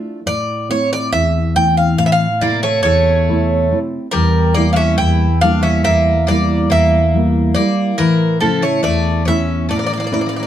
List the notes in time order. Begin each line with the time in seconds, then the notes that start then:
Already playing: A3 D4 F4
0.26 A2 D5
0.69 A3 C4 E4 C#5
0.93 D5
1.12 E2 E5
1.55 E3 A3 C4 G5
1.77 F5
1.98 A2 F5
2.06 E5
2.12 F5
2.41 C3 A3 A#3 E4 D5
2.63 A3 C#5
2.83 E2 A3 C#5
3.29 C3 A3 E4
3.71 A3 C4 E4
4.11 E2 G3 A#4
4.54 G3 A#3 E4 D5
4.73 C#4 D4 E5 F5
4.98 E2 E4 G5
5.41 G3 A#3 D4 E4 F5
5.63 C#4 E5
5.84 E2 A#3 E5
6.27 G3 A#3 E4 D5
6.70 E2 A#3 E5
7.14 G3 A#3 E4
7.54 G3 A#3 E4 D5
7.98 A2 E3 A#4
8.41 C#3 F3 A3 E4 A4
8.62 A3 C#5
8.83 E2 A3 D5
9.25 A3 C#4 E4 E5
9.69 A2 A3 D5
9.76 A#3 D5
9.83 A#3 D5
9.90 A#3 D5
9.97 A#3 D5
10.04 A#3 D5
10.12 A3 A#3 C#4 E4 D5
10.19 A#3 D5
10.26 A#3 D5
10.33 A#3 D5
10.40 A#3 D5